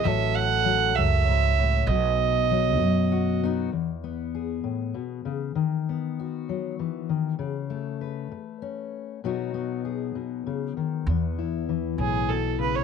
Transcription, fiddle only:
\new Staff \with { instrumentName = "Fiddle" } { \time 6/8 \key e \major \tempo 4. = 65 e''8 fis''4 e''4. | dis''2~ dis''8 r8 | r2. | r2. |
r2. | r2. | r4. gis'8 a'8 b'16 cis''16 | }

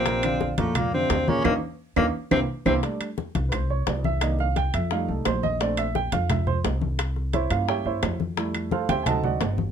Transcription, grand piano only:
<<
  \new Staff \with { instrumentName = "Grand piano" } { \time 4/4 \key bes \lydian \tempo 4 = 173 <bes, bes bes'>8 <d d' f'>4 <bes, bes bes'>4 <d d' f'>4 <bes, bes bes'>8 | <bes cis' ees'>8 r4 <bes cis' ees'>8 r8 <bes c' e'>8 r8 <bes c' e'>8 | \key c \mixolydian r2 <b' c''>8 des''8 d''8 e''8 | ees''8 f''8 g''8 e''8 f''8 a'8 c''8 ees''8 |
d''8 e''8 g''8 f''8 e''8 c''8 r4 | r4 <e' c'' des'' e''>8 <f' f''>8 <g' des'' e'' g''>8 <e' c'' des'' e''>4 r8 | r4 <f' a' c'' f''>8 <g' c'' e'' g''>8 <a' ees'' fis'' aes'' a''>8 <fis' d'' ees'' fis''>4 r8 | }
  \new Staff \with { instrumentName = "Grand piano" } { \time 4/4 \key bes \lydian r1 | r1 | \key c \mixolydian <g a d'>8 r2. r8 | <ees bes d'>8 r4. <g a ees'>4. r8 |
<a c' d'>8 r2. r8 | r4. <bes des' e'>4. r4 | <g a e'>4. r8 <fis c' ees'>4. r8 | }
>>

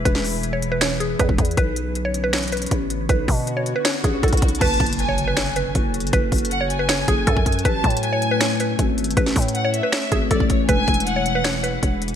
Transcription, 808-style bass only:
\new Staff \with { instrumentName = "808-style bass" } { \clef bass \time 4/4 \key fis \minor \tempo 4 = 158 e,,2. e,16 e,,16 e,8 | b,,2. a,,4 | b,,8 b,4~ b,16 r8. a,,8 b,,16 b,,16 b,,8 | fis,,8 fis,,2~ fis,,8 fis,,4 |
fis,,8 fis,,2 fis,,8 fis,4 | a,,8 a,2~ a,8 gis,,4 | a,,8 a,4~ a,16 r8. gis,,8 a,,4 | e,,8 e,,2~ e,,8 e,,4 | }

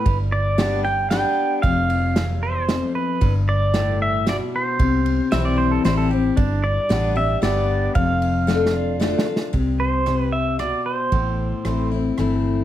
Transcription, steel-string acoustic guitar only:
\new Staff \with { instrumentName = "Steel-string acoustic guitar" } { \time 3/4 \key c \major \tempo 4 = 114 << { r4 <g b d' g'>8 g'8 <g b d' g'>4 | r2. | r2. | r4 <e g c' e'>4 <e g c' e'>8 <c' e'>8 |
r4 <g b d' g'>8 <d' g'>8 <g b d' g'>4 | r4 <d a d' f'>8 <d' f'>8 <d a d' f'>8 <d' f'>8 | r2. | r4 <e a c' e'>8 <c' e'>8 <e a c' e'>4 | } \\ { g,2 r4 | f,4 e,4 f,4 | g,4 a,4 b,4 | c2 r4 |
g,2 r4 | f,2 r4 | c4 c4 b,4 | a,2 r4 | } >> }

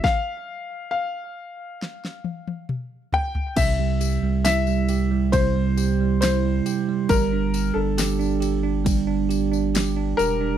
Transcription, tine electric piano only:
\new Staff \with { instrumentName = "Tine electric piano" } { \time 4/4 \key c \mixolydian \tempo 4 = 68 r1 | c16 g16 g'16 g16 e'16 g16 g'16 g16 c16 g16 g'16 g16 e'16 g16 g'16 g16 | g16 d'16 g'16 d'16 g'16 d'16 g'16 d'16 g16 d'16 g'16 d'16 g'16 d'16 g'16 d'16 | }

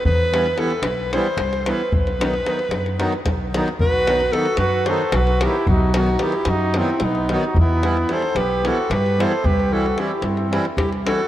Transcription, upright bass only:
\new Staff \with { instrumentName = "Upright bass" } { \clef bass \time 7/8 \tempo 4 = 112 e,4. b,,4 c,4 | b,,4. fis,4 b,,4 | b,,4. fis,4 b,,4 | b,,4. fis,4 b,,4 |
e,4. b,,4 g,4 | c,4. g,4 c,4 | }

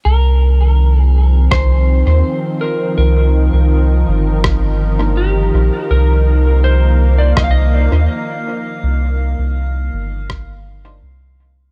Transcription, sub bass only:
\new Staff \with { instrumentName = "Sub bass" } { \clef bass \time 4/4 \key c \minor \tempo 4 = 82 c,2 c,8. ees,16 r4 | c,8. c,8. g,,2 bes,,16 r16 | c,2 c,8. ees,16 r4 | c,8. c,8. g,,4. c,4 | }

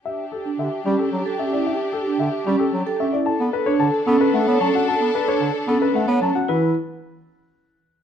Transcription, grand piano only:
\new Staff \with { instrumentName = "Grand piano" } { \time 3/4 \key e \dorian \tempo 4 = 112 e''16 r16 a'16 r16 e''16 r16 g'16 a'16 r8 e''16 d''16 | e''16 r16 a'16 r16 e''16 r16 g'16 a'16 r8 e''16 d''16 | a''16 r16 b'16 cis''16 a''16 r16 a'16 b'16 fis''16 r16 a''16 fis''16 | a''16 r16 b'16 cis''16 a''16 r16 a'16 b'16 fis''16 r16 a''16 fis''16 |
b'8 r2 r8 | }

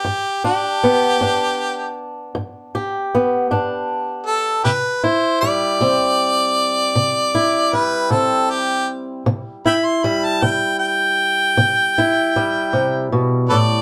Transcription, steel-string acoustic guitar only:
\new Staff \with { instrumentName = "Steel-string acoustic guitar" } { \clef bass \time 12/8 \key c \lydian \tempo 4. = 52 << { r8 d'8 b8 d'2 g'8 b8 d'4. | r8 e'8 g8 c'2 e'8 g8 c'4. | r8 e'8 g2~ g8 e'8 g2 | } \\ { g,4 r8 g,4 r8 g,4 r8 g,4 r8 | c4 r8 c4 r8 c4 r8 c4 r8 | c4 r8 c4 r8 c4 r8 c8 b,8 a,8 | } >> }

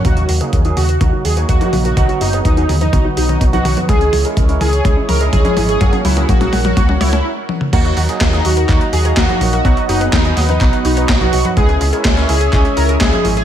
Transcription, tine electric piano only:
\new Staff \with { instrumentName = "Tine electric piano" } { \time 4/4 \key dis \phrygian \tempo 4 = 125 <fis ais dis' fis'>8. <fis ais dis' gis'>8 <fis ais dis' gis'>8 r16 <fis ais dis' fis'>8. <fis ais dis' fis'>8 <fis ais dis' fis'>8. | <fis b dis' fis'>8. <fis b dis' gis'>8 <fis b dis' gis'>8 r16 <fis b dis' fis'>8. <fis b dis' fis'>8 <fis b dis' fis'>8. | <gis cis' e' gis'>8. <gis cis' e' ais'>8 <gis cis' e' ais'>8 r16 <gis cis' e' gis'>8. <gis cis' e' gis'>8 <gis cis' e' gis'>8. | <fis ais cis' fis'>8. <fis ais cis' gis'>8 <fis ais cis' gis'>8 r16 <fis ais cis' fis'>8. r4 r16 |
<fis ais dis' fis'>8. <fis ais dis' gis'>8 <fis ais dis' gis'>8 r16 <fis ais dis' fis'>8. <fis ais dis' fis'>8 <fis ais dis' fis'>8. | <fis b dis' fis'>8. <fis b dis' gis'>8 <fis b dis' gis'>8 r16 <fis b dis' fis'>8. <fis b dis' fis'>8 <fis b dis' fis'>8. | <gis cis' e' gis'>8. <gis cis' e' ais'>8 <gis cis' e' ais'>8 r16 <gis cis' e' gis'>8. <gis cis' e' gis'>8 <gis cis' e' gis'>8. | }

